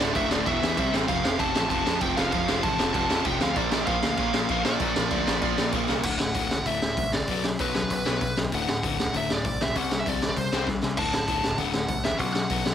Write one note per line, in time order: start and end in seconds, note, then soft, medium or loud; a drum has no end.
0.00 0.11 D1 medium
0.00 0.14 D2 medium
0.00 0.14 A2 medium
0.00 0.15 D3 loud
0.00 0.16 D5 loud
0.00 snare loud
0.15 0.27 F#1 medium
0.15 0.31 D2 medium
0.15 0.31 A2 medium
0.15 0.29 D3 loud
0.15 0.31 E5 medium
0.15 kick loud
0.15 crash medium
0.31 0.42 D#1 medium
0.31 0.46 D2 loud
0.31 0.46 A2 loud
0.31 0.45 D3 loud
0.31 0.46 D5 medium
0.31 snare loud
0.46 0.58 E1 medium
0.46 0.62 E2 medium
0.46 0.62 B2 loud
0.46 0.61 E3 loud
0.46 0.90 E5 loud
0.46 kick loud
0.46 crash medium
0.62 0.79 E2 medium
0.62 0.77 E2 medium
0.62 0.77 B2 medium
0.62 0.77 E3 loud
0.62 snare loud
0.77 0.89 C2 medium
0.77 0.93 C3 loud
0.77 0.92 G3 medium
0.77 0.92 C4 loud
0.77 kick loud
0.77 crash medium
0.93 1.05 A1 medium
0.93 1.08 C3 medium
0.93 1.08 G3 medium
0.93 1.09 C4 medium
0.93 snare loud
1.08 1.20 F1 medium
1.08 1.24 F2 loud
1.08 1.23 C3 loud
1.08 1.23 F3 loud
1.08 1.40 F5 loud
1.08 kick loud
1.08 crash medium
1.23 1.35 F1 medium
1.23 1.38 F2 medium
1.23 1.38 C3 medium
1.23 1.40 F3 medium
1.23 snare loud
1.39 1.51 F1 medium
1.39 1.54 F2 medium
1.39 1.53 C3 loud
1.39 1.53 F3 loud
1.39 1.68 A5 loud
1.39 kick loud
1.39 crash medium
1.54 1.67 A1 medium
1.54 1.69 F2 loud
1.54 1.70 C3 loud
1.54 1.71 F3 loud
1.54 snare loud
1.70 1.82 F1 medium
1.70 1.85 F2 medium
1.70 1.85 C3 medium
1.70 1.85 F3 medium
1.70 2.02 A5 loud
1.70 kick loud
1.70 crash medium
1.85 2.00 F2 medium
1.85 1.98 F2 medium
1.85 2.01 C3 loud
1.85 2.02 F3 loud
1.85 snare loud
2.01 2.13 F1 medium
2.01 2.16 F2 loud
2.01 2.16 C3 loud
2.01 2.16 F3 loud
2.01 2.16 G5 loud
2.01 kick loud
2.01 crash medium
2.16 2.28 F1 medium
2.16 2.32 F2 medium
2.16 2.33 C3 medium
2.16 2.34 F3 medium
2.16 2.31 F5 loud
2.16 snare loud
2.32 2.44 F1 medium
2.32 2.48 F2 loud
2.32 2.48 C3 loud
2.32 2.47 F3 loud
2.32 2.64 F5 loud
2.32 kick loud
2.32 crash medium
2.48 2.59 F1 loud
2.48 2.62 F2 medium
2.48 2.63 C3 medium
2.48 2.64 F3 loud
2.48 snare loud
2.63 2.75 A1 medium
2.63 2.78 F2 medium
2.63 2.78 C3 medium
2.63 2.78 F3 medium
2.63 2.92 A5 loud
2.63 kick loud
2.63 crash medium
2.78 2.91 F1 medium
2.78 2.92 F2 medium
2.78 2.93 C3 loud
2.78 2.95 F3 loud
2.78 snare loud
2.94 3.06 F1 medium
2.94 3.10 F2 medium
2.94 3.09 C3 medium
2.94 3.09 F3 loud
2.94 3.23 A5 loud
2.94 kick loud
2.94 crash medium
3.10 3.21 F2 medium
3.10 3.23 F2 medium
3.10 3.24 C3 loud
3.10 3.25 F3 loud
3.10 snare loud
3.24 3.37 F1 loud
3.24 3.40 F2 loud
3.24 3.39 C3 loud
3.24 3.40 F3 loud
3.24 3.42 G5 loud
3.24 kick loud
3.24 crash medium
3.40 3.53 D2 medium
3.40 3.55 F2 medium
3.40 3.55 C3 medium
3.40 3.56 F3 loud
3.40 3.57 F5 loud
3.40 snare loud
3.55 3.68 A#1 loud
3.55 3.73 A#2 loud
3.55 3.72 F3 loud
3.55 3.71 A#3 loud
3.55 3.86 D5 loud
3.55 kick loud
3.55 crash medium
3.71 3.83 A#1 loud
3.71 3.87 A#2 medium
3.71 3.88 F3 medium
3.71 3.88 A#3 loud
3.71 snare loud
3.87 3.98 A#1 medium
3.87 4.03 A#2 medium
3.87 4.02 F3 medium
3.87 4.02 A#3 loud
3.87 4.17 F5 loud
3.87 kick loud
3.87 crash medium
4.03 4.14 D2 medium
4.03 4.17 A#2 medium
4.03 4.18 F3 loud
4.03 4.19 A#3 loud
4.03 snare loud
4.17 4.29 A#1 medium
4.17 4.34 A#2 medium
4.17 4.33 F3 loud
4.17 4.32 A#3 loud
4.17 4.61 F5 loud
4.17 kick loud
4.17 crash medium
4.33 4.45 A#2 medium
4.33 4.48 A#2 medium
4.33 4.49 F3 medium
4.33 4.50 A#3 loud
4.33 snare loud
4.49 4.60 A#1 medium
4.49 4.65 A#2 loud
4.49 4.64 F3 medium
4.49 4.63 A#3 loud
4.49 kick loud
4.49 crash medium
4.65 4.76 A#1 medium
4.65 4.79 A#2 medium
4.65 4.80 F3 medium
4.65 4.80 A#3 loud
4.65 5.70 D5 medium
4.65 snare loud
4.80 4.92 A#1 medium
4.80 4.96 A#2 loud
4.80 4.96 F3 loud
4.80 4.95 A#3 loud
4.80 kick loud
4.80 crash medium
4.96 5.08 A#1 loud
4.96 5.10 A#2 medium
4.96 5.11 F3 medium
4.96 5.12 A#3 loud
4.96 snare loud
5.11 5.23 D2 medium
5.11 5.27 A#2 medium
5.11 5.26 F3 medium
5.11 5.26 A#3 loud
5.11 kick loud
5.11 crash medium
5.27 5.39 A#1 medium
5.27 5.41 A#2 medium
5.27 5.42 F3 loud
5.27 5.43 A#3 loud
5.27 snare loud
5.42 5.54 A#1 medium
5.42 5.57 A#2 medium
5.42 5.57 F3 medium
5.42 5.56 A#3 medium
5.42 kick loud
5.42 crash medium
5.57 5.71 A#2 medium
5.57 5.70 A#2 medium
5.57 5.72 F3 loud
5.57 5.73 A#3 loud
5.57 snare loud
5.72 5.85 A#1 medium
5.72 5.88 A#2 medium
5.72 5.87 F3 loud
5.72 5.87 A#3 loud
5.72 kick loud
5.72 crash medium
5.88 6.01 C2 medium
5.88 6.04 A#2 medium
5.88 6.03 F3 medium
5.88 6.03 A#3 medium
5.88 snare medium
6.03 6.17 D1 medium
6.03 6.18 D2 medium
6.03 6.19 A2 medium
6.03 6.20 D3 loud
6.03 6.18 F#5 loud
6.03 kick loud
6.03 crash loud
6.19 6.33 D1 medium
6.19 6.33 D2 medium
6.19 6.34 A2 medium
6.19 6.67 F#5 loud
6.19 snare loud
6.34 6.48 D1 medium
6.34 6.49 D2 medium
6.34 6.49 A2 medium
6.34 6.50 D3 loud
6.34 kick loud
6.34 open hi-hat medium
6.50 6.64 D1 medium
6.50 6.65 D2 medium
6.50 6.65 A2 medium
6.50 snare loud
6.58 kick medium
6.66 6.79 D1 medium
6.66 6.80 D2 medium
6.66 6.81 A2 medium
6.66 6.82 D3 medium
6.66 7.15 E5 loud
6.66 kick medium
6.66 open hi-hat medium
6.82 6.95 D1 medium
6.82 6.96 D2 medium
6.82 6.96 A2 medium
6.82 snare loud
6.97 7.10 C2 medium
6.97 7.12 D2 medium
6.97 7.12 A2 medium
6.97 kick loud
6.97 open hi-hat medium
7.13 7.27 A1 medium
7.13 7.28 D2 medium
7.13 7.28 A2 medium
7.13 7.42 D5 medium
7.13 snare loud
7.20 kick medium
7.28 7.54 B1 medium
7.28 7.43 B2 medium
7.28 7.43 F#3 loud
7.28 7.44 B3 loud
7.28 kick medium
7.28 open hi-hat medium
7.44 7.58 B2 medium
7.44 7.58 F#3 medium
7.44 snare loud
7.59 7.72 B1 medium
7.59 7.74 B2 medium
7.59 7.75 F#3 loud
7.59 7.75 B3 loud
7.59 7.92 B4 medium
7.59 kick loud
7.59 open hi-hat medium
7.75 7.89 B1 medium
7.75 7.89 B2 medium
7.75 7.89 F#3 medium
7.75 snare loud
7.83 kick medium
7.90 8.03 B1 medium
7.90 8.04 B2 medium
7.90 8.05 F#3 medium
7.90 8.35 B4 medium
7.90 kick loud
7.90 open hi-hat medium
8.05 8.20 B1 medium
8.05 8.20 B2 loud
8.05 8.21 F#3 loud
8.05 8.21 B3 loud
8.05 snare loud
8.21 8.34 B1 medium
8.21 8.35 B2 medium
8.21 8.36 F#3 medium
8.21 kick loud
8.21 open hi-hat medium
8.37 8.50 B1 medium
8.37 8.51 B2 medium
8.37 8.51 F#3 medium
8.37 snare loud
8.45 kick medium
8.52 8.65 D1 medium
8.52 8.67 D2 medium
8.52 8.67 A2 medium
8.52 8.68 D3 loud
8.52 8.68 F#5 loud
8.52 kick loud
8.52 open hi-hat medium
8.68 8.81 D1 medium
8.68 8.82 D2 medium
8.68 8.82 A2 medium
8.68 9.16 F#5 loud
8.68 snare loud
8.83 8.96 D1 medium
8.83 8.98 D2 medium
8.83 8.98 A2 loud
8.83 8.98 D3 loud
8.83 kick loud
8.83 open hi-hat medium
8.99 9.12 D1 medium
8.99 9.12 D2 medium
8.99 9.13 A2 medium
8.99 snare loud
9.06 kick medium
9.14 9.27 D1 medium
9.14 9.28 D2 medium
9.14 9.28 A2 loud
9.14 9.29 D3 loud
9.14 9.31 E5 medium
9.14 kick medium
9.14 open hi-hat medium
9.30 9.43 D1 medium
9.30 9.44 D2 medium
9.30 9.44 A2 medium
9.30 9.62 D5 medium
9.30 snare loud
9.44 9.58 C2 medium
9.44 9.59 D2 medium
9.44 9.59 A2 medium
9.44 kick loud
9.44 open hi-hat medium
9.61 9.73 B1 medium
9.61 9.74 D2 medium
9.61 9.75 A2 medium
9.61 9.77 E5 medium
9.61 snare loud
9.68 kick medium
9.76 10.01 C2 medium
9.76 9.90 C3 medium
9.76 9.91 G3 loud
9.76 9.91 C4 medium
9.76 10.00 F#5 loud
9.76 kick medium
9.76 open hi-hat medium
9.91 10.05 C3 medium
9.91 10.05 G3 medium
9.91 snare loud
10.00 10.07 E5 medium
10.06 10.19 C2 medium
10.06 10.21 C3 medium
10.06 10.21 G3 loud
10.06 10.22 C4 medium
10.06 10.28 D5 medium
10.06 kick loud
10.06 open hi-hat medium
10.22 10.35 C2 medium
10.22 10.35 C3 medium
10.22 10.35 G3 medium
10.22 snare loud
10.29 10.33 D5 medium
10.29 kick medium
10.37 10.49 C2 medium
10.37 10.51 C3 medium
10.37 10.51 G3 medium
10.37 10.66 C5 medium
10.37 kick loud
10.37 open hi-hat medium
10.52 10.65 C2 medium
10.52 10.67 C3 loud
10.52 10.66 G3 loud
10.52 10.67 C4 loud
10.52 snare loud
10.67 10.80 C2 medium
10.67 10.81 C3 medium
10.67 10.81 G3 medium
10.67 kick loud
10.67 snare medium
10.83 10.95 C2 medium
10.83 10.96 C3 medium
10.83 10.96 G3 medium
10.83 snare medium
10.97 11.10 D1 medium
10.97 11.12 D2 medium
10.97 11.12 A2 medium
10.97 11.13 D3 loud
10.97 11.13 A5 loud
10.97 kick loud
10.97 crash medium
11.13 11.26 D1 medium
11.13 11.27 D2 medium
11.13 11.27 A2 medium
11.13 11.61 A5 loud
11.13 snare loud
11.28 11.41 D1 medium
11.28 11.43 D2 medium
11.28 11.43 A2 loud
11.28 11.43 D3 medium
11.28 kick loud
11.28 open hi-hat medium
11.44 11.57 D1 medium
11.44 11.57 D2 medium
11.44 11.58 A2 medium
11.44 snare loud
11.51 kick medium
11.58 11.71 D1 medium
11.58 11.73 D2 medium
11.58 11.73 A2 medium
11.58 11.74 D3 loud
11.58 12.04 F#5 medium
11.58 kick medium
11.58 open hi-hat soft
11.74 11.87 D1 medium
11.74 11.88 D2 medium
11.74 11.88 A2 medium
11.74 snare loud
11.88 12.02 C2 medium
11.88 12.03 D2 medium
11.88 12.03 A2 medium
11.88 kick loud
11.88 open hi-hat medium
12.04 12.20 A1 medium
12.04 12.18 D2 medium
12.04 12.18 A2 medium
12.04 12.18 E5 medium
12.04 snare loud
12.12 kick medium
12.18 12.45 B1 medium
12.18 12.34 B2 medium
12.18 12.34 F#3 medium
12.18 12.35 B3 medium
12.18 12.32 F#5 loud
12.18 kick loud
12.18 open hi-hat medium
12.33 12.49 B2 medium
12.33 12.49 F#3 medium
12.33 12.74 F#5 loud
12.33 snare loud
12.50 12.63 B1 medium
12.50 12.64 B2 loud
12.50 12.64 F#3 medium
12.50 12.65 B3 loud
12.50 kick loud
12.50 open hi-hat medium
12.65 12.74 B1 medium
12.65 12.74 B2 medium
12.65 12.74 F#3 medium
12.65 snare loud